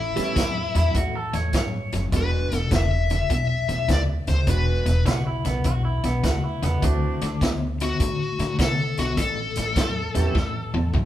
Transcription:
Already playing: overdriven electric guitar A2 E3, lead electric guitar E4
0.16 upright bass A1, overdriven electric guitar A2 E3, grand piano G3 B3 C#4 E4, snare, closed hi-hat
0.36 upright bass E2, overdriven electric guitar A2 F#3, kick, snare, closed hi-hat
0.75 upright bass E2, overdriven electric guitar A2 F#3, clean electric guitar E4, snare, closed hi-hat
0.94 upright bass E2, overdriven electric guitar A2 E3, clean electric guitar F#4, kick, closed hi-hat
1.15 clean electric guitar A4
1.33 upright bass E2, overdriven electric guitar A2 E3, clean electric guitar C#5, snare, closed hi-hat
1.53 upright bass G2, overdriven electric guitar A2 F#3, clean electric guitar C#5, kick, snare, closed hi-hat
1.92 upright bass F#1, overdriven electric guitar A2 F#3, snare, closed hi-hat
2.12 upright bass E1, overdriven electric guitar E2 B2, grand piano G#3 B3 D4 F#4, kick, snare, closed hi-hat
2.17 lead electric guitar B4
2.51 upright bass E1, overdriven electric guitar E2 B2, snare, closed hi-hat
2.58 lead electric guitar A4
2.71 upright bass E1, overdriven electric guitar E2 C#3, kick, snare, closed hi-hat
2.76 lead electric guitar E5
3.10 overdriven electric guitar E2 C#3, snare, closed hi-hat
3.30 upright bass B1, overdriven electric guitar E2 B2, lead electric guitar E5, kick, closed hi-hat
3.69 upright bass B1, overdriven electric guitar E2 B2, snare, closed hi-hat
3.88 upright bass D2, overdriven electric guitar E2 C#3, lead electric guitar D5, kick, snare, closed hi-hat
4.27 upright bass D2, overdriven electric guitar E2 C#3, lead electric guitar C5, snare, closed hi-hat
4.47 upright bass E1, overdriven electric guitar E2 B2, grand piano G#3 B3 D4 F#4, lead electric guitar B4, kick, closed hi-hat
4.86 upright bass E1, overdriven electric guitar E2 B2, snare, closed hi-hat
5.05 upright bass B1, overdriven electric guitar E2 C#3, clean electric guitar F#4, kick, snare, closed hi-hat
5.27 clean electric guitar E4
5.45 upright bass B1, overdriven electric guitar E2 C#3, clean electric guitar B3, snare, closed hi-hat
5.64 upright bass B1, overdriven electric guitar E2 B2, clean electric guitar F#4, kick, closed hi-hat
5.85 clean electric guitar E4
6.04 upright bass B1, overdriven electric guitar E2 B2, clean electric guitar B3, snare, closed hi-hat
6.23 upright bass D2, overdriven electric guitar E2 C#3, clean electric guitar F#4, kick, snare, closed hi-hat
6.44 clean electric guitar E4
6.63 upright bass E2, overdriven electric guitar E2 C#3, clean electric guitar B3, snare, closed hi-hat
6.82 upright bass D2, overdriven electric guitar D3 A3, grand piano A3 C4 E4 F#4, clean electric guitar D4, kick, closed hi-hat
7.21 upright bass D2, overdriven electric guitar D3 A3, snare, closed hi-hat
7.41 upright bass D2, overdriven electric guitar D3 B3, kick, snare, closed hi-hat
7.80 overdriven electric guitar D3 B3, lead electric guitar F#4, snare, closed hi-hat
8.00 upright bass A2, overdriven electric guitar D3 A3, kick, closed hi-hat
8.39 upright bass A2, overdriven electric guitar D3 A3, snare, closed hi-hat
8.59 upright bass C3, overdriven electric guitar D3 B3, lead electric guitar A4, kick, snare, closed hi-hat
8.97 upright bass B1, overdriven electric guitar D3 B3, lead electric guitar F#4, snare, closed hi-hat
9.17 upright bass A1, overdriven electric guitar A2 E3, lead electric guitar A4, kick, snare, closed hi-hat
9.56 upright bass A1, overdriven electric guitar A2 E3, snare, closed hi-hat
9.76 upright bass E2, overdriven electric guitar A2 F#3, kick, snare, closed hi-hat
10.14 upright bass E2, overdriven electric guitar A2 F#3, grand piano B3 C#4 E4 G4, snare, closed hi-hat
10.35 upright bass E2, overdriven electric guitar A2 E3, kick, snare
10.74 upright bass E2, overdriven electric guitar A2 E3, high tom
10.93 upright bass G2, overdriven electric guitar A2 F#3, kick, mid tom

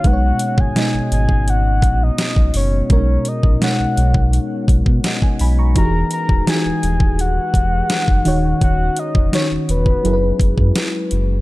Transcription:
Already playing: glass harmonica C#4 D#4 F#4
0.04 sub bass B1, fm electric piano B2 G#3 D#4 B4, glass harmonica G#3 B3, soft synth lead F#5, kick, closed hi-hat
0.13 fm electric piano C#5
0.39 closed hi-hat
0.58 sub bass G#1, soft synth lead G#5, kick
0.75 fm electric piano B2 G#3 D#4 D#5, snare, closed hi-hat
0.94 sub bass G#1
1.12 sub bass G#1, soft synth lead G#5, closed hi-hat
1.29 kick
1.48 soft synth lead F#5, closed hi-hat
1.82 sub bass A#1, kick, closed hi-hat
2.03 soft synth lead D#5
2.18 snare, closed hi-hat
2.36 sub bass B1, kick
2.54 sub bass F#1, soft synth lead C#5, open hi-hat
2.89 sub bass B1, fm electric piano B2 G#3 C#4 A#4, soft synth lead C#5, kick, closed hi-hat
2.98 fm electric piano D#4
3.25 soft synth lead D#5, closed hi-hat
3.43 sub bass A#1, kick
3.61 fm electric piano B2 G#3 D#4 C#5, soft synth lead F#5, snare, closed hi-hat
3.80 sub bass B1
3.97 sub bass B1, closed hi-hat
4.14 kick
4.33 closed hi-hat
4.68 sub bass B1, kick, closed hi-hat
4.86 sub bass B2, kick
5.04 fm electric piano D#5 F#5, snare, closed hi-hat
5.22 fm electric piano G#5, kick
5.39 sub bass B1, fm electric piano G#5 B5, open hi-hat
5.59 fm electric piano A#5 C#6
5.75 sub bass E1, fm electric piano E3 D#4 F#4 G4, glass harmonica F#4 G#4 B4, soft synth lead A#5, kick, closed hi-hat
5.85 fm electric piano G#4
6.11 soft synth lead A#5, closed hi-hat
6.29 sub bass D#1, kick
6.47 fm electric piano E3 D#4 F#4 G4, soft synth lead G#5, snare, closed hi-hat
6.56 fm electric piano G#4
6.65 sub bass D#1
6.83 sub bass D#1, closed hi-hat
7.00 kick
7.19 soft synth lead F#5, closed hi-hat
7.54 sub bass E1, kick, closed hi-hat
7.90 snare, closed hi-hat
8.08 sub bass F#1, kick
8.25 sub bass D#1, fm electric piano D#3 D#4 F#4 C#5, glass harmonica C#4 D#4 C#5, open hi-hat
8.61 sub bass D#1, soft synth lead F#5, kick, closed hi-hat
8.97 soft synth lead D#5, closed hi-hat
9.15 sub bass E1, kick
9.32 fm electric piano D#3 D#4 F#4 C#5, soft synth lead C#5, snare, closed hi-hat
9.51 sub bass E1
9.69 sub bass E1, soft synth lead B4, closed hi-hat
9.86 kick
10.04 sub bass F#1, fm electric piano F#3 E4 G#4 A#4, glass harmonica G#3 E4 B4, closed hi-hat
10.13 fm electric piano B4
10.40 sub bass F#1, kick, closed hi-hat
10.58 sub bass F#2, kick
10.75 snare, closed hi-hat
11.11 sub bass F#1, closed hi-hat

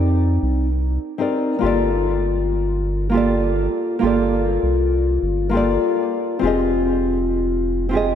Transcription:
Already playing: analog synth bass F2, nylon-string guitar C4 D#4 G4 A#4 D5
0.43 analog synth bass C2
1.18 nylon-string guitar C4 D#4 G4 A#4 D5
1.59 nylon-string guitar A#3 F4 G4
1.63 analog synth bass G1, nylon-string guitar A4 D5
3.09 nylon-string guitar A#3 F4 G4
3.15 nylon-string guitar A4 D5
3.99 nylon-string guitar A#3 F4
4.03 analog synth bass G1, nylon-string guitar G4 A4 D5
4.63 analog synth bass C2
5.23 analog synth bass G1
5.49 nylon-string guitar A#3 F4 G4
5.55 nylon-string guitar A4 D5
6.39 analog synth bass F1, nylon-string guitar C4 F4 G4
6.45 nylon-string guitar G#4 D#5
7.89 nylon-string guitar C4 F4 G4
7.95 nylon-string guitar G#4 D#5

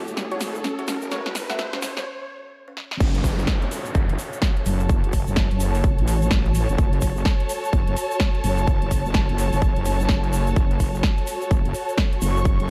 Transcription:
Already playing: ambient pad A3 A4 C#5, string section F#4 A4 C#5 A5, riser
0.07 wobble bass F#1, closed hi-hat, shaker
0.17 snare, closed hi-hat, shaker
0.31 synth stab A3 F#4 C#5, closed hi-hat
0.40 wobble bass G#1, snare, open hi-hat, shaker
0.55 closed hi-hat, shaker
0.64 kalimba C#4, snare, closed hi-hat, shaker
0.79 synth stab A3 F#4 C#5, closed hi-hat
0.88 wobble bass F#1, kalimba C#4, snare, open hi-hat, shaker
1.02 closed hi-hat, shaker
1.11 synth stab A3 F#4 C#5, snare, closed hi-hat, shaker
1.26 wobble bass F#1, snare, closed hi-hat
1.35 snare, open hi-hat, shaker
1.50 synth stab A3 F#4 E5, snare, closed hi-hat, shaker
1.59 wobble bass F#1, snare, closed hi-hat, shaker
1.73 kalimba C#4, snare, closed hi-hat
1.82 kalimba C#4, snare, open hi-hat, shaker
1.97 kalimba B3, snare, closed hi-hat, shaker
2.68 kalimba C#4
2.77 kalimba C#4, snare
2.91 snare
3.00 wobble bass F#1, string section F#4, kick, closed hi-hat, crash, downlifter, shaker
3.11 string section A4
3.15 closed hi-hat
3.24 wobble bass F#1, kick, open hi-hat, shaker
3.39 shaker
3.47 kick, snare, closed hi-hat, shaker
3.52 string section C#5
3.62 closed hi-hat
3.71 open hi-hat, shaker
3.85 closed hi-hat, shaker
3.95 wobble bass F#1, kick, closed hi-hat, shaker
4.09 wobble bass F#1, closed hi-hat
4.19 open hi-hat, shaker
4.33 closed hi-hat, shaker
4.42 kick, snare, closed hi-hat, shaker
4.57 closed hi-hat
4.64 wobble bass F#1, string section A5, open hi-hat, shaker
4.80 closed hi-hat, shaker
4.89 kick, closed hi-hat, shaker
5.04 wobble bass F#1, closed hi-hat
5.13 kick, open hi-hat, shaker
5.27 wobble bass F#1, shaker
5.36 kick, snare, closed hi-hat, shaker
5.51 wobble bass F#1, closed hi-hat
5.60 open hi-hat, shaker
5.74 open hi-hat, shaker
5.84 kick, closed hi-hat, shaker
5.98 wobble bass A1, closed hi-hat
6.08 open hi-hat, shaker
6.22 closed hi-hat, shaker
6.31 wobble bass A1, kick, snare, closed hi-hat, shaker
6.46 closed hi-hat
6.55 open hi-hat, shaker
6.69 wobble bass F#1, closed hi-hat, shaker
6.78 wobble bass F#1, kick, closed hi-hat, shaker
6.93 closed hi-hat
7.01 wobble bass F#1, kick, open hi-hat, shaker
7.17 shaker
7.25 kick, snare, closed hi-hat, shaker
7.40 closed hi-hat
7.49 open hi-hat, shaker
7.64 closed hi-hat, shaker
7.73 wobble bass F#1, kick, closed hi-hat, shaker
7.87 wobble bass F#1, closed hi-hat
7.97 open hi-hat, shaker
8.11 closed hi-hat, shaker
8.20 kick, snare, closed hi-hat, shaker
8.35 closed hi-hat
8.44 wobble bass F#1, open hi-hat, shaker
8.58 closed hi-hat, shaker
8.67 kick, closed hi-hat, shaker
8.82 wobble bass F#1, closed hi-hat
8.91 kick, open hi-hat, shaker
9.05 wobble bass F#1, shaker
9.14 kick, snare, closed hi-hat, shaker
9.29 wobble bass F#1, closed hi-hat
9.38 open hi-hat, shaker
9.53 wobble bass F#1, open hi-hat, shaker
9.62 kick, closed hi-hat, shaker
9.76 wobble bass F#1, closed hi-hat
9.85 open hi-hat, shaker
10.00 closed hi-hat, shaker
10.09 wobble bass F#1, kick, snare, closed hi-hat, shaker
10.24 closed hi-hat
10.33 open hi-hat, shaker
10.47 closed hi-hat, shaker
10.56 wobble bass F#1, kick, closed hi-hat, shaker
10.71 closed hi-hat
10.80 wobble bass F#1, kick, open hi-hat, shaker
10.94 shaker
11.03 kick, snare, closed hi-hat, shaker
11.18 closed hi-hat
11.27 open hi-hat, shaker
11.42 closed hi-hat, shaker
11.51 wobble bass F#1, kick, closed hi-hat, shaker
11.65 wobble bass F#1, closed hi-hat
11.74 open hi-hat, shaker
11.89 closed hi-hat, shaker
11.98 kick, snare, closed hi-hat, shaker
12.13 closed hi-hat
12.20 wobble bass F#1, string section C#6, open hi-hat, shaker
12.36 closed hi-hat, shaker
12.45 kick, closed hi-hat, shaker
12.60 wobble bass F#1, closed hi-hat

